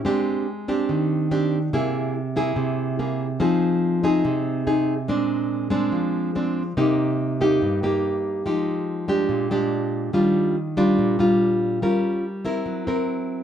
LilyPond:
\new Staff \with { instrumentName = "Nylon-string guitar" } { \time 4/4 \key bes \mixolydian \tempo 4 = 143 << { <c' d' g'>4 r8 <c' d' g'>4. <c' d' g'>8 r8 | <bes e' gis'>4 r8 <bes e' gis'>4. <bes e' gis'>8 r8 | <c' ees' aes'>4. <c' ees' aes'>4. <c' ees' aes'>8 r8 | <aes c' d'>4. <aes c' d'>4. <aes c' d'>8 r8 |
\key c \minor <bes ees' g'>4. <bes ees' g'>4 <bes ees' g'>4. | <aes ees' g'>4. <aes d' g'>4 <aes d' g'>4. | <g d' f'>4 r8 <g d' f'>4 <g d' f'>4. | <des' f' bes'>4 r8 <c' e' bes'>4 <bis e' ais'>4. | } \\ { aes2 ees2 | c2 c2 | f2 c2 | bes,2 f2 |
c2 g,2 | f2 bes,2 | ees2 bes,2 | g2 fis2 | } >> }